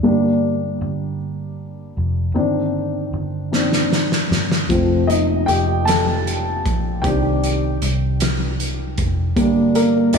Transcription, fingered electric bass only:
0, 0, Header, 1, 2, 480
1, 0, Start_track
1, 0, Tempo, 777202
1, 20, Time_signature, 6, 3, 24, 8
1, 6288, End_track
2, 0, Start_track
2, 0, Title_t, "Fingered electric bass"
2, 0, Program_c, 0, 33
2, 24, Note_on_c, 0, 31, 85
2, 475, Note_off_c, 0, 31, 0
2, 501, Note_on_c, 0, 31, 88
2, 1193, Note_off_c, 0, 31, 0
2, 1216, Note_on_c, 0, 29, 74
2, 1442, Note_off_c, 0, 29, 0
2, 1454, Note_on_c, 0, 31, 90
2, 1911, Note_off_c, 0, 31, 0
2, 1935, Note_on_c, 0, 31, 79
2, 2636, Note_off_c, 0, 31, 0
2, 2661, Note_on_c, 0, 31, 69
2, 2889, Note_off_c, 0, 31, 0
2, 2902, Note_on_c, 0, 29, 83
2, 3363, Note_off_c, 0, 29, 0
2, 3386, Note_on_c, 0, 29, 90
2, 4084, Note_off_c, 0, 29, 0
2, 4112, Note_on_c, 0, 34, 74
2, 4337, Note_off_c, 0, 34, 0
2, 4348, Note_on_c, 0, 36, 87
2, 4804, Note_off_c, 0, 36, 0
2, 4829, Note_on_c, 0, 36, 94
2, 5522, Note_off_c, 0, 36, 0
2, 5546, Note_on_c, 0, 29, 84
2, 5771, Note_off_c, 0, 29, 0
2, 5785, Note_on_c, 0, 31, 89
2, 6237, Note_off_c, 0, 31, 0
2, 6262, Note_on_c, 0, 31, 96
2, 6288, Note_off_c, 0, 31, 0
2, 6288, End_track
0, 0, End_of_file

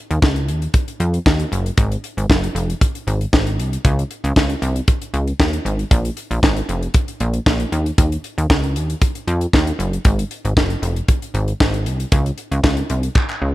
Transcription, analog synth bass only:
0, 0, Header, 1, 2, 480
1, 0, Start_track
1, 0, Tempo, 517241
1, 1647, Time_signature, 4, 2, 24, 8
1, 12571, End_track
2, 0, Start_track
2, 0, Title_t, "Analog synth bass"
2, 0, Program_c, 0, 38
2, 98, Note_on_c, 0, 39, 98
2, 180, Note_off_c, 0, 39, 0
2, 206, Note_on_c, 0, 37, 98
2, 450, Note_on_c, 0, 39, 99
2, 464, Note_off_c, 0, 37, 0
2, 626, Note_off_c, 0, 39, 0
2, 927, Note_on_c, 0, 41, 97
2, 1104, Note_off_c, 0, 41, 0
2, 1169, Note_on_c, 0, 39, 94
2, 1345, Note_off_c, 0, 39, 0
2, 1409, Note_on_c, 0, 30, 90
2, 1585, Note_off_c, 0, 30, 0
2, 1650, Note_on_c, 0, 32, 108
2, 1826, Note_off_c, 0, 32, 0
2, 2017, Note_on_c, 0, 32, 90
2, 2099, Note_off_c, 0, 32, 0
2, 2131, Note_on_c, 0, 30, 104
2, 2306, Note_off_c, 0, 30, 0
2, 2366, Note_on_c, 0, 29, 95
2, 2543, Note_off_c, 0, 29, 0
2, 2850, Note_on_c, 0, 32, 108
2, 3025, Note_off_c, 0, 32, 0
2, 3089, Note_on_c, 0, 32, 100
2, 3327, Note_on_c, 0, 36, 89
2, 3341, Note_off_c, 0, 32, 0
2, 3504, Note_off_c, 0, 36, 0
2, 3571, Note_on_c, 0, 37, 110
2, 3746, Note_off_c, 0, 37, 0
2, 3934, Note_on_c, 0, 37, 99
2, 4017, Note_off_c, 0, 37, 0
2, 4048, Note_on_c, 0, 37, 89
2, 4224, Note_off_c, 0, 37, 0
2, 4288, Note_on_c, 0, 36, 95
2, 4464, Note_off_c, 0, 36, 0
2, 4767, Note_on_c, 0, 37, 98
2, 4943, Note_off_c, 0, 37, 0
2, 5008, Note_on_c, 0, 39, 101
2, 5184, Note_off_c, 0, 39, 0
2, 5245, Note_on_c, 0, 32, 100
2, 5422, Note_off_c, 0, 32, 0
2, 5485, Note_on_c, 0, 34, 109
2, 5662, Note_off_c, 0, 34, 0
2, 5853, Note_on_c, 0, 34, 100
2, 5937, Note_off_c, 0, 34, 0
2, 5965, Note_on_c, 0, 32, 102
2, 6143, Note_off_c, 0, 32, 0
2, 6206, Note_on_c, 0, 29, 84
2, 6383, Note_off_c, 0, 29, 0
2, 6687, Note_on_c, 0, 34, 95
2, 6863, Note_off_c, 0, 34, 0
2, 6926, Note_on_c, 0, 34, 104
2, 7103, Note_off_c, 0, 34, 0
2, 7168, Note_on_c, 0, 39, 99
2, 7344, Note_off_c, 0, 39, 0
2, 7407, Note_on_c, 0, 39, 94
2, 7583, Note_off_c, 0, 39, 0
2, 7775, Note_on_c, 0, 39, 98
2, 7857, Note_off_c, 0, 39, 0
2, 7887, Note_on_c, 0, 37, 94
2, 8128, Note_on_c, 0, 39, 90
2, 8142, Note_off_c, 0, 37, 0
2, 8304, Note_off_c, 0, 39, 0
2, 8607, Note_on_c, 0, 41, 96
2, 8784, Note_off_c, 0, 41, 0
2, 8848, Note_on_c, 0, 39, 99
2, 9024, Note_off_c, 0, 39, 0
2, 9085, Note_on_c, 0, 30, 84
2, 9262, Note_off_c, 0, 30, 0
2, 9327, Note_on_c, 0, 32, 104
2, 9503, Note_off_c, 0, 32, 0
2, 9695, Note_on_c, 0, 32, 100
2, 9778, Note_off_c, 0, 32, 0
2, 9807, Note_on_c, 0, 30, 106
2, 9983, Note_off_c, 0, 30, 0
2, 10045, Note_on_c, 0, 29, 96
2, 10222, Note_off_c, 0, 29, 0
2, 10524, Note_on_c, 0, 32, 104
2, 10702, Note_off_c, 0, 32, 0
2, 10768, Note_on_c, 0, 32, 101
2, 11007, Note_on_c, 0, 36, 88
2, 11020, Note_off_c, 0, 32, 0
2, 11183, Note_off_c, 0, 36, 0
2, 11248, Note_on_c, 0, 37, 101
2, 11424, Note_off_c, 0, 37, 0
2, 11614, Note_on_c, 0, 37, 100
2, 11697, Note_off_c, 0, 37, 0
2, 11725, Note_on_c, 0, 37, 102
2, 11903, Note_off_c, 0, 37, 0
2, 11971, Note_on_c, 0, 36, 94
2, 12146, Note_off_c, 0, 36, 0
2, 12451, Note_on_c, 0, 37, 96
2, 12571, Note_off_c, 0, 37, 0
2, 12571, End_track
0, 0, End_of_file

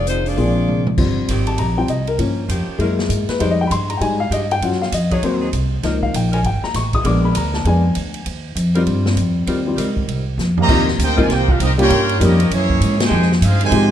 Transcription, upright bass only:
0, 0, Header, 1, 3, 480
1, 0, Start_track
1, 0, Key_signature, -3, "major"
1, 0, Tempo, 303337
1, 1549, Time_signature, 4, 2, 24, 8
1, 22013, End_track
2, 0, Start_track
2, 0, Title_t, "Upright bass"
2, 0, Program_c, 0, 32
2, 0, Note_on_c, 0, 29, 85
2, 537, Note_off_c, 0, 29, 0
2, 585, Note_on_c, 0, 34, 89
2, 1499, Note_off_c, 0, 34, 0
2, 1546, Note_on_c, 0, 31, 75
2, 2013, Note_off_c, 0, 31, 0
2, 2032, Note_on_c, 0, 32, 88
2, 2496, Note_off_c, 0, 32, 0
2, 2506, Note_on_c, 0, 34, 82
2, 2968, Note_off_c, 0, 34, 0
2, 2978, Note_on_c, 0, 36, 82
2, 3450, Note_off_c, 0, 36, 0
2, 3459, Note_on_c, 0, 43, 81
2, 3925, Note_off_c, 0, 43, 0
2, 3934, Note_on_c, 0, 41, 85
2, 4221, Note_off_c, 0, 41, 0
2, 4405, Note_on_c, 0, 42, 94
2, 4884, Note_off_c, 0, 42, 0
2, 4894, Note_on_c, 0, 44, 81
2, 5181, Note_off_c, 0, 44, 0
2, 5383, Note_on_c, 0, 41, 90
2, 5854, Note_off_c, 0, 41, 0
2, 5865, Note_on_c, 0, 43, 94
2, 6328, Note_off_c, 0, 43, 0
2, 6337, Note_on_c, 0, 44, 85
2, 6801, Note_off_c, 0, 44, 0
2, 6811, Note_on_c, 0, 43, 88
2, 7288, Note_off_c, 0, 43, 0
2, 7296, Note_on_c, 0, 42, 77
2, 7771, Note_off_c, 0, 42, 0
2, 7784, Note_on_c, 0, 41, 87
2, 8255, Note_off_c, 0, 41, 0
2, 8263, Note_on_c, 0, 39, 83
2, 8734, Note_off_c, 0, 39, 0
2, 8750, Note_on_c, 0, 36, 87
2, 9217, Note_off_c, 0, 36, 0
2, 9231, Note_on_c, 0, 37, 91
2, 9698, Note_off_c, 0, 37, 0
2, 9719, Note_on_c, 0, 34, 85
2, 10167, Note_off_c, 0, 34, 0
2, 10177, Note_on_c, 0, 32, 85
2, 10463, Note_off_c, 0, 32, 0
2, 10667, Note_on_c, 0, 33, 88
2, 11136, Note_off_c, 0, 33, 0
2, 11143, Note_on_c, 0, 34, 86
2, 11613, Note_off_c, 0, 34, 0
2, 11626, Note_on_c, 0, 38, 93
2, 12095, Note_off_c, 0, 38, 0
2, 12101, Note_on_c, 0, 41, 93
2, 12572, Note_off_c, 0, 41, 0
2, 12598, Note_on_c, 0, 38, 84
2, 13060, Note_off_c, 0, 38, 0
2, 13072, Note_on_c, 0, 39, 84
2, 13528, Note_off_c, 0, 39, 0
2, 13538, Note_on_c, 0, 41, 97
2, 14010, Note_off_c, 0, 41, 0
2, 14029, Note_on_c, 0, 43, 91
2, 14495, Note_off_c, 0, 43, 0
2, 14502, Note_on_c, 0, 41, 92
2, 14972, Note_off_c, 0, 41, 0
2, 14987, Note_on_c, 0, 39, 83
2, 15454, Note_off_c, 0, 39, 0
2, 15464, Note_on_c, 0, 37, 85
2, 15927, Note_off_c, 0, 37, 0
2, 15937, Note_on_c, 0, 36, 80
2, 16409, Note_off_c, 0, 36, 0
2, 16420, Note_on_c, 0, 41, 90
2, 16890, Note_off_c, 0, 41, 0
2, 16910, Note_on_c, 0, 39, 82
2, 17375, Note_off_c, 0, 39, 0
2, 17384, Note_on_c, 0, 38, 93
2, 17847, Note_off_c, 0, 38, 0
2, 17856, Note_on_c, 0, 36, 96
2, 18328, Note_off_c, 0, 36, 0
2, 18355, Note_on_c, 0, 36, 92
2, 18817, Note_off_c, 0, 36, 0
2, 18835, Note_on_c, 0, 43, 90
2, 19297, Note_off_c, 0, 43, 0
2, 19309, Note_on_c, 0, 41, 104
2, 19774, Note_off_c, 0, 41, 0
2, 19787, Note_on_c, 0, 42, 96
2, 20253, Note_off_c, 0, 42, 0
2, 20261, Note_on_c, 0, 44, 94
2, 20730, Note_off_c, 0, 44, 0
2, 20739, Note_on_c, 0, 41, 96
2, 21209, Note_off_c, 0, 41, 0
2, 21223, Note_on_c, 0, 43, 97
2, 21691, Note_off_c, 0, 43, 0
2, 21703, Note_on_c, 0, 44, 102
2, 22013, Note_off_c, 0, 44, 0
2, 22013, End_track
3, 0, Start_track
3, 0, Title_t, "Muted upright bass strokes"
3, 4237, Note_on_c, 9, 29, 42
3, 4395, Note_off_c, 9, 29, 0
3, 5192, Note_on_c, 9, 29, 38
3, 5351, Note_off_c, 9, 29, 0
3, 10493, Note_on_c, 9, 29, 39
3, 10652, Note_off_c, 9, 29, 0
3, 22013, End_track
0, 0, End_of_file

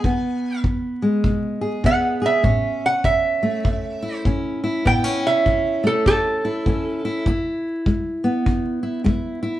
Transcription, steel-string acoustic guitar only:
0, 0, Header, 1, 2, 480
1, 0, Start_track
1, 0, Key_signature, 4, "major"
1, 0, Tempo, 601202
1, 35, Time_signature, 4, 2, 24, 8
1, 7663, End_track
2, 0, Start_track
2, 0, Title_t, "Steel-string acoustic guitar"
2, 0, Program_c, 0, 25
2, 36, Note_on_c, 0, 40, 73
2, 41, Note_on_c, 0, 59, 61
2, 479, Note_off_c, 0, 40, 0
2, 513, Note_on_c, 0, 52, 60
2, 817, Note_on_c, 0, 56, 53
2, 957, Note_off_c, 0, 52, 0
2, 992, Note_on_c, 0, 47, 58
2, 1288, Note_on_c, 0, 68, 59
2, 1437, Note_off_c, 0, 47, 0
2, 1465, Note_off_c, 0, 59, 0
2, 1466, Note_on_c, 0, 52, 62
2, 1474, Note_on_c, 0, 59, 56
2, 1760, Note_off_c, 0, 68, 0
2, 1770, Note_on_c, 0, 68, 58
2, 1914, Note_off_c, 0, 52, 0
2, 1932, Note_off_c, 0, 68, 0
2, 1936, Note_off_c, 0, 56, 0
2, 1942, Note_on_c, 0, 45, 69
2, 1947, Note_off_c, 0, 59, 0
2, 1951, Note_on_c, 0, 61, 61
2, 2392, Note_off_c, 0, 45, 0
2, 2429, Note_on_c, 0, 52, 57
2, 2736, Note_on_c, 0, 57, 56
2, 2876, Note_off_c, 0, 52, 0
2, 2910, Note_on_c, 0, 40, 64
2, 3213, Note_on_c, 0, 64, 60
2, 3356, Note_off_c, 0, 40, 0
2, 3393, Note_off_c, 0, 61, 0
2, 3394, Note_on_c, 0, 52, 58
2, 3402, Note_on_c, 0, 61, 58
2, 3698, Note_off_c, 0, 64, 0
2, 3701, Note_on_c, 0, 64, 65
2, 3838, Note_off_c, 0, 52, 0
2, 3856, Note_off_c, 0, 57, 0
2, 3857, Note_off_c, 0, 61, 0
2, 3873, Note_on_c, 0, 45, 70
2, 3876, Note_on_c, 0, 59, 60
2, 4023, Note_off_c, 0, 59, 0
2, 4023, Note_on_c, 0, 61, 51
2, 4318, Note_off_c, 0, 45, 0
2, 4356, Note_on_c, 0, 52, 54
2, 4660, Note_on_c, 0, 57, 62
2, 4799, Note_off_c, 0, 52, 0
2, 4844, Note_on_c, 0, 40, 55
2, 5144, Note_off_c, 0, 64, 0
2, 5147, Note_on_c, 0, 64, 62
2, 5283, Note_off_c, 0, 40, 0
2, 5315, Note_off_c, 0, 61, 0
2, 5324, Note_on_c, 0, 52, 58
2, 5327, Note_on_c, 0, 61, 59
2, 5624, Note_off_c, 0, 64, 0
2, 5628, Note_on_c, 0, 64, 66
2, 5763, Note_off_c, 0, 52, 0
2, 5777, Note_off_c, 0, 57, 0
2, 5779, Note_off_c, 0, 61, 0
2, 5797, Note_off_c, 0, 64, 0
2, 5800, Note_on_c, 0, 40, 75
2, 5807, Note_on_c, 0, 64, 73
2, 6241, Note_off_c, 0, 40, 0
2, 6277, Note_on_c, 0, 56, 58
2, 6579, Note_on_c, 0, 59, 58
2, 6719, Note_off_c, 0, 56, 0
2, 6753, Note_on_c, 0, 40, 57
2, 7039, Note_off_c, 0, 64, 0
2, 7048, Note_on_c, 0, 64, 61
2, 7197, Note_off_c, 0, 40, 0
2, 7212, Note_off_c, 0, 64, 0
2, 7219, Note_on_c, 0, 56, 63
2, 7222, Note_on_c, 0, 64, 62
2, 7516, Note_off_c, 0, 64, 0
2, 7526, Note_on_c, 0, 64, 66
2, 7663, Note_off_c, 0, 56, 0
2, 7663, Note_off_c, 0, 59, 0
2, 7663, Note_off_c, 0, 64, 0
2, 7663, End_track
0, 0, End_of_file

